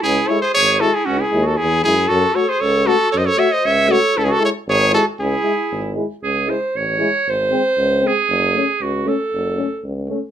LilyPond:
<<
  \new Staff \with { instrumentName = "Trumpet" } { \time 2/4 \key cis \minor \tempo 4 = 116 gis'8 cis''16 bis'16 cis''8 a'16 gis'16 | fis'16 gis'8 a'16 gis'8 gis'8 | a'8 cis''16 bis'16 cis''8 a'8 | cis''32 dis''32 cis''16 e''16 dis''16 e''8 cis''8 |
a'32 gis'32 a'16 cis''16 r16 cis''8 a'8 | gis'4. r8 | r2 | r2 |
r2 | r2 | }
  \new Staff \with { instrumentName = "Clarinet" } { \time 2/4 \key cis \minor e'8 a'16 gis'16 gis'8 fis'16 e'16 | cis'16 e'8 fis'16 e'8 e'8 | fis'8 a'16 gis'16 a'8 fis'8 | a'32 bis'32 a'16 cis''16 bis'16 cis''8 a'8 |
e'32 e'32 fis'16 a'16 r16 gis'8 fis'8 | e'4. r8 | gis'8 bis'8 cis''4 | bis'4. gis'8~ |
gis'4 fis'8 a'8~ | a'4 r4 | }
  \new Staff \with { instrumentName = "Euphonium" } { \time 2/4 \key cis \minor r8 e'8 r8 e'8 | r8 e'8 r8 e'8 | r8 fis'8 r8 fis'8 | r8 fis'8 r8 fis'8 |
r8 e'8 r8 e'8 | r8 e'8 r8 e'8 | r8 e'8 r8 e'8 | r8 bis8 r8 bis8 |
r8 cis'8 r8 cis'8 | r8 cis'8 r8 cis'8 | }
  \new Staff \with { instrumentName = "Euphonium" } { \clef bass \time 2/4 \key cis \minor r8 gis8 r8 gis8 | r8 gis8 r8 gis8 | r8 a8 r8 a8 | r8 a8 r8 a8 |
r8 gis8 r8 gis8 | r8 gis8 r8 gis8 | r8 gis8 r8 gis8 | r8 gis8 r8 gis8 |
r8 a8 r8 a8 | r8 a8 r8 a8 | }
  \new Staff \with { instrumentName = "Tuba" } { \clef bass \time 2/4 \key cis \minor cis,8 r8 gis,,4 | cis,8 dis,8 e,8 fis,8 | fis,8 r8 cis,4 | fis,8 r8 cis,4 |
cis,8 r8 gis,,4 | cis,8 r8 gis,,4 | cis,4 a,,4 | gis,,4 cis,4 |
fis,,4 cis,4 | fis,,4 cis,4 | }
>>